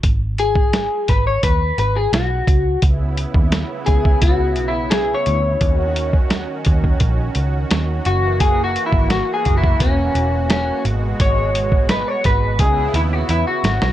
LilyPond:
<<
  \new Staff \with { instrumentName = "Clean electric guitar" } { \time 4/4 \key cis \dorian \tempo 4 = 86 r8 gis'4 b'16 cis''16 b'8 b'16 gis'16 fis'4 | r4. gis'8 \tuplet 3/2 { fis'4 e'8 gis'8 cis''4~ } | cis''8. r2 r8. fis'8 | \tuplet 3/2 { gis'8 fis'8 e'8 fis'8 gis'8 e'8 } cis'4 cis'8 r8 |
cis''4 b'16 cis''16 b'8 gis'8 e'16 fis'16 e'16 fis'8. | }
  \new Staff \with { instrumentName = "Analog synth pad" } { \time 4/4 \key cis \dorian << { r1 | e'1 | fis'1~ | fis'1~ |
fis'2 e'2 | } \\ { r1 | <cis b>1 | <dis cis'>2.~ <dis cis'>8 <e ais>8~ | <e ais>2.~ <e ais>8 <b, gis>8~ |
<b, gis>2 <cis b>2 | } >> }
  \new Staff \with { instrumentName = "Picked electric bass" } { \clef bass \time 4/4 \key cis \dorian gis,,4~ gis,,16 r16 gis,,8 dis,8 gis,,8 b,,8 cis,8 | cis,8. dis,8 r16 cis,8 cis,8 b,,4 d,8 | dis,4~ dis,16 r16 dis,8 ais,,8 cis,8 dis,8 fis,,8~ | fis,,8. gis,,8 r16 fis,,8 e,,8 e,,4 gis,,8 |
gis,,4~ gis,,16 r16 gis,,8 cis,8 dis,8 e,16 r16 gis,,16 b,,16 | }
  \new DrumStaff \with { instrumentName = "Drums" } \drummode { \time 4/4 <hh bd>8 hh16 bd16 <hh sn>8 <hh bd sn>8 <hh bd>8 hh8 <hh sn>8 <hh bd>8 | <hh bd>8 hh16 bd16 <hh sn>8 <hh bd>16 bd16 <hh bd>8 hh8 <hh sn>8 hh8 | <hh bd>8 hh16 bd16 <hh sn>8 <hh bd>16 bd16 <hh bd>8 hh8 <hh sn>8 hh8 | <hh bd>8 hh16 bd16 <hh sn>8 <hh bd>16 bd16 <hh bd>8 hh8 <hh sn>8 hh8 |
<hh bd>8 hh16 bd16 <hh sn>8 <hh bd sn>8 <hh bd>8 hh8 hh8 <hh sn>16 sn16 | }
>>